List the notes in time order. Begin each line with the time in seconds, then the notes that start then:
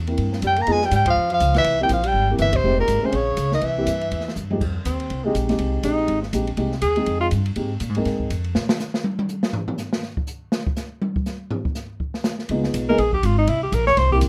Already playing: E2
0.07 A#3 C4 E4 A#4, ride
0.18 G2, kick, ride
0.33 snare
0.42 F#2 G3, kick, hi-hat pedal, ride
0.47 G5
0.56 A#3, ride
0.62 A#5
0.67 F2 G#3 B3 D#4 F4 G#4, kick, ride
0.72 G#5
0.81 G3, snare
0.86 G5
0.91 G#2 G3, kick, hi-hat pedal, ride
0.96 G5
1.06 F3, kick, ride
1.10 F5
1.16 F2
1.30 F3, ride
1.34 F5
1.40 C#2, kick, hi-hat pedal, ride
1.54 E3 E5, snare, ride
1.64 C2, kick, ride
1.80 G3 A#3 C4 E4 G4 G5
1.89 A#1 F3, kick, hi-hat pedal, ride
1.93 F5
2.04 G3 G5, ride
2.14 G#1, kick
2.31 A#3 C4 E4 G4
2.38 G1 E3 E5, kick, hi-hat pedal, ride
2.53 C3 C5, kick, ride
2.64 F1 G#3 C4 D#4 G4
2.78 A#2 A#4
2.88 G#1, kick, hi-hat pedal, ride
3.02 C3 G#3 C4 C#4 G#4 C5, muted upright bass stroke
3.12 A#1 C#3 C#5, kick, ride
3.37 C#2, kick, hi-hat pedal, ride
3.52 D#3 D#5, snare
3.61 C2 E3, kick, ride
3.66 E5
3.78 A#3 C4 E4 G4
3.87 G2, kick, hi-hat pedal, ride
4.01 ride
4.11 E2, kick, ride
4.20 snare
4.28 snare
4.36 G2, floor tom, hi-hat pedal
4.50 F2 G#3 C4 D#4 G4, high tom
4.61 F2, kick, crash
4.85 D#2 C4, kick, hi-hat pedal, ride
5.00 ride
5.10 C2, kick, ride
5.25 G#3 C4 D#4 G4
5.35 A#1, kick, hi-hat pedal, ride
5.49 G#3 C4 D#4 G4, snare, ride
5.59 C2, kick, ride
5.83 A#1 G#3 C4 D#4 G4, kick, hi-hat pedal, ride
6.08 G#1, kick, ride
6.22 C4, snare
6.33 A#1 G#3 C4 D#4 G4, kick, hi-hat pedal, ride
6.47 ride
6.57 C2 G#3 C4 D#4 G4, kick, ride
6.72 snare
6.82 D#2 G#4, kick, hi-hat pedal, ride
6.96 G#3 C4 D#4 G#4, ride
7.06 F2, kick, ride
7.21 F4
7.31 G2, kick, hi-hat pedal, ride
7.46 ride
7.56 G#2 G#3 C4 D#4 G4, kick, ride
7.80 A#2, kick, hi-hat pedal, ride
7.89 G#2
7.95 F2 G#3 C4 D#4 A#4, ride
8.05 G#2, kick, snare, ride
8.20 kick
8.30 F2, kick, hi-hat pedal, ride
8.44 ride
8.55 A#2, snare
8.69 snare
8.80 snare, hi-hat pedal
8.94 snare
9.04 high tom
9.19 high tom
9.29 hi-hat pedal, high tom
9.43 snare
9.53 floor tom
9.68 floor tom
9.78 snare, hi-hat pedal
9.93 snare
10.03 snare
10.17 kick
10.27 hi-hat pedal
10.52 snare
10.67 kick
10.76 snare, hi-hat pedal
11.02 high tom
11.16 kick
11.26 snare, hi-hat pedal
11.51 floor tom
11.65 kick
11.75 snare, hi-hat pedal
12.00 kick
12.14 snare
12.24 snare, hi-hat pedal
12.39 snare
12.49 C#2 G#3 B3 D#4 F4, kick, ride
12.64 snare
12.74 B1, kick, hi-hat pedal, ride
12.89 G#3 B3 D#4 G#4 A#4
12.98 A#1 G#4, kick, ride
13.13 G4, kick
13.23 G#1 F4, kick, hi-hat pedal, ride
13.39 D#4
13.47 C2 E4, ride
13.63 G4
13.72 A#1 A#4, kick, hi-hat pedal, ride
13.87 C#5, snare
13.97 C2 C5, kick, snare, ride
14.11 A#3 C4 E4 G4, kick
14.21 E2, kick, hi-hat pedal, ride